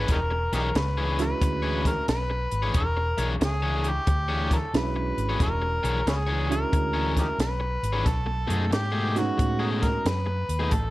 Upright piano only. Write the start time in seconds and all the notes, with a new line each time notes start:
1.18 F#3 G#3 C#4 D4 E4
4.74 F#3 G#3 C#4 D4 E4
6.49 F#3 G#3 C#4 D4 E4
9.16 F#3 G#3 B3 C#4 D#4